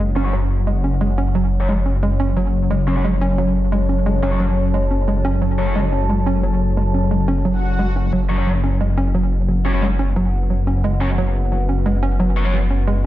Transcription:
0.00 2.69 F#1 medium
0.00 13.06 F#3 medium
0.00 0.10 G#3 loud
0.00 13.06 C#4 medium
0.00 8.09 C#5 medium
0.00 2.68 F#5 medium
0.16 0.23 F#3 medium
0.16 0.32 C#4 loud
0.16 0.23 C#4 medium
0.16 0.23 C#5 medium
0.25 0.33 F#3 medium
0.25 0.33 C#4 medium
0.25 0.33 C#5 medium
0.33 0.49 F#3 loud
0.67 0.74 G#3 loud
0.84 1.00 C#4 medium
1.01 1.12 G#3 loud
1.18 1.34 C#4 loud
1.35 1.51 F#3 loud
1.60 1.69 F#3 medium
1.60 1.69 C#4 medium
1.60 1.69 C#5 medium
1.69 1.75 G#3 loud
1.86 2.02 C#4 medium
2.03 2.14 G#3 loud
2.20 2.36 C#4 loud
2.37 2.53 F#3 loud
2.71 8.11 F#1 medium
2.71 2.77 G#3 loud
2.71 8.11 A5 medium
2.87 2.94 F#3 medium
2.87 3.04 C#4 medium
2.87 2.94 C#4 medium
2.87 2.94 C#5 loud
2.96 3.05 F#3 medium
2.96 3.05 C#4 medium
2.96 3.05 C#5 medium
3.04 3.15 G#3 loud
3.21 3.37 C#4 loud
3.38 3.54 F#3 loud
3.72 3.79 G#3 loud
3.89 4.05 C#4 medium
4.06 4.17 G#3 loud
4.23 4.30 F#3 medium
4.23 4.39 C#4 loud
4.23 4.30 C#4 medium
4.23 4.30 C#5 loud
4.31 4.40 F#3 medium
4.31 4.40 C#4 medium
4.31 4.40 C#5 medium
4.40 4.56 F#3 loud
4.74 4.80 G#3 loud
4.91 5.07 C#4 medium
5.08 5.19 G#3 loud
5.25 5.41 C#4 loud
5.42 5.58 F#3 loud
5.58 5.65 F#3 medium
5.58 5.65 C#4 medium
5.58 5.65 C#5 loud
5.67 5.76 F#3 medium
5.67 5.76 C#4 medium
5.67 5.76 C#5 medium
5.76 5.82 G#3 loud
5.92 6.09 C#4 medium
6.09 6.20 G#3 loud
6.26 6.43 C#4 loud
6.43 6.59 F#3 loud
6.77 6.84 G#3 loud
6.94 7.10 C#4 medium
7.11 7.22 G#3 loud
7.28 7.44 C#4 loud
7.45 7.61 F#3 loud
7.45 swell medium
7.79 7.86 G#3 loud
7.96 8.12 C#4 medium
8.13 13.06 F#1 medium
8.13 8.29 F#3 loud
8.13 13.06 B4 medium
8.13 13.06 F#5 medium
8.30 8.36 F#3 medium
8.30 8.36 C#4 medium
8.30 8.36 C#5 loud
8.38 8.47 F#3 medium
8.38 8.47 C#4 medium
8.38 8.47 C#5 medium
8.47 8.53 F#3 medium
8.64 8.80 C#4 medium
8.81 8.92 G#3 loud
8.98 9.14 C#4 loud
9.15 9.31 F#3 loud
9.48 9.55 F#3 medium
9.65 9.72 F#3 medium
9.65 9.82 C#4 medium
9.65 9.72 C#4 medium
9.65 9.72 C#5 medium
9.73 9.82 F#3 medium
9.73 9.82 C#4 medium
9.73 9.82 C#5 medium
9.82 9.93 G#3 loud
9.99 10.15 C#4 loud
10.16 10.32 F#3 loud
10.50 10.57 F#3 medium
10.67 10.83 C#4 medium
10.84 10.95 G#3 loud
11.01 11.07 F#3 medium
11.01 11.17 C#4 loud
11.01 11.07 C#4 medium
11.01 11.07 C#5 loud
11.18 11.34 F#3 loud
11.52 11.58 F#3 medium
11.69 11.85 C#4 medium
11.86 11.97 G#3 loud
12.03 12.19 C#4 loud
12.20 12.36 F#3 loud
12.36 12.43 F#3 medium
12.36 12.43 C#4 medium
12.36 12.43 C#5 loud
12.45 12.54 F#3 medium
12.45 12.54 C#4 medium
12.45 12.54 C#5 medium
12.53 12.60 F#3 medium
12.70 12.87 C#4 medium
12.87 12.98 G#3 loud

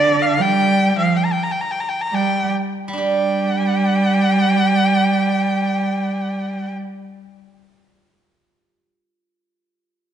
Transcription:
0.00 0.41 D3 medium
0.00 2.00 D3 soft
0.00 0.36 G3 soft
0.00 0.23 D5 medium
0.22 0.43 F5 medium
0.39 0.96 G3 medium
0.39 0.97 G5 medium
0.97 1.14 F3 medium
0.97 1.18 F5 medium
1.17 1.27 G5 medium
1.25 1.34 A#5 medium
1.33 1.45 G5 medium
1.43 1.53 A#5 medium
1.52 1.63 G5 medium
1.61 1.73 A#5 medium
1.71 1.81 G5 medium
1.80 1.90 A#5 soft
1.89 2.02 G5 medium
2.01 2.16 A#5 medium
2.11 2.46 G3 medium
2.11 2.51 G5 medium
2.88 8.95 G3 soft
2.93 7.69 D4 soft
2.98 6.73 G3 medium
2.98 6.98 G4 soft
2.98 6.72 G5 medium

